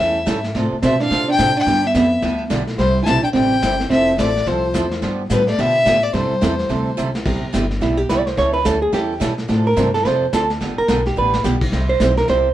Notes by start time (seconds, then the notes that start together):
Already playing: A3 E5
0.00 E2 E3 G3 C#4 E4 A4
0.26 G#2 E3 G3 C#4 E4 A4, kick, snare, hi-hat pedal
0.44 snare
0.55 A2 C3 F3 C4 D4 A4, brush sweep, kick, snare
0.72 muted upright bass stroke
0.82 B2 C3 F3 C4 D4 A4 E5, kick, snare, hi-hat pedal
1.00 D4 F5, snare
1.10 C3 F3 C4 D4 A4, brush sweep, kick, snare
1.28 D4 G5
1.38 A2 C3 F3 C4 D4 A4, kick, snare, hi-hat pedal
1.57 D4 G5
1.66 G2 D3 G3 B3 D4 G4, brush sweep, kick, snare
1.85 B3 E5
1.94 F2 D3 G3 B3 D4 G4 E5, kick, snare, hi-hat pedal
2.22 D2 D3 G3 B3 D4 G4, brush sweep, kick, snare
2.50 B1 D3 G3 B3 D4 G4, kick, snare, hi-hat pedal
2.67 snare
2.78 C2 C3 G3 C4 E4 G4 C5, brush sweep, kick, snare
3.03 B1 E4 G#5 A5, kick, snare, hi-hat pedal
3.07 C3 G3 C4 E4 G4
3.23 D4 G5, muted upright bass stroke
3.33 A1 C3 G3 C4 E4 G4 G5, brush sweep, kick, snare
3.62 G1 C3 G3 C4 E4 G4, kick, snare, hi-hat pedal
3.80 snare
3.90 F1 F3 C4 E4 A4 E5, brush sweep, kick, snare
4.18 A1 F3 A3 C4 E4 A4 D5, kick, snare, hi-hat pedal
4.36 snare
4.46 C2 F3 C4 E4 A4 C5, brush sweep, kick, snare
4.74 E2 F3 C4 E4 A4, kick, snare, hi-hat pedal
4.91 snare
5.02 G2 D3 F3 B3 D4 G4, brush sweep, kick, snare
5.30 A2 D3 F3 G3 B3 D4 G4 B4, kick, snare, hi-hat pedal
5.47 A3 D5, snare
5.58 B2 D3 F3 B3 D4 G4 E5, brush sweep, kick, snare
5.85 A2 D3 F3 B3 D4 G4, kick, snare, hi-hat pedal
6.03 A3 D5
6.13 G2 C3 E3 G3 C4 E4 A4 C5, brush sweep, kick, snare
6.31 muted upright bass stroke
6.41 E2 C3 E3 G3 C4 E4 A4, kick, snare, hi-hat pedal
6.59 snare
6.69 D2 C3 E3 G3 C4 E4 A4, brush sweep, kick, snare
6.97 C#2 C3 E3 G3 C4 E4 A4, hi-hat pedal
7.15 snare
7.25 C2 C3 G3 B3 E4 G4, brush sweep, kick, snare, crash
7.43 muted upright bass stroke
7.53 G1 C3 G3 B3 E4 G4, kick, snare, hi-hat pedal
7.71 snare
7.81 B1 C3 G3 B3 E4 G4, brush sweep, kick, snare
7.97 G4
8.09 C2 C3 G3 B3 E4 G4 B4, kick, snare, hi-hat pedal
8.19 D5
8.27 C5, snare
8.37 C#2 E3 G3 C#4 E4 A4 C#5, brush sweep, kick, snare
8.54 B4
8.65 D2 E3 G3 C#4 E4 A4, kick, snare, hi-hat pedal
8.82 G#4
8.92 E2 E3 G3 C#4 E4 G4 A4, brush sweep, kick, snare
9.20 B2 E3 G3 C#4 E4 A4, kick, snare, hi-hat pedal
9.38 snare
9.48 A2 C3 F3 C4 D4 A4, brush sweep, kick, snare
9.67 A#4
9.76 G2 C3 F3 C4 D4 A4, kick, snare, hi-hat pedal
9.94 A4, snare
10.05 F2 C3 F3 C4 D4 A4 C5, brush sweep, kick, snare
10.33 D2 C3 F3 C4 D4 A4, kick, snare, hi-hat pedal
10.50 snare
10.61 G1 D3 G3 B3 D4 G4, brush sweep, kick, snare
10.78 A#4, muted upright bass stroke
10.88 B1 D3 G3 B3 D4 G4, kick, snare, hi-hat pedal
11.06 G4, snare
11.16 A1 D3 G3 B3 D4 G4 B4
11.34 snare
11.44 B1 D3 G3 B3 D4 G4, snare, hi-hat pedal
11.61 kick, crash
11.72 C2 C3 G3 C4 E4 G4, brush sweep, kick, snare
11.89 C5
12.00 B1 C3 G3 C4 E4 G4, kick, snare, hi-hat pedal
12.17 A#4, snare
12.28 C2 C3 G3 C4 E4 G4 C5, brush sweep, kick, snare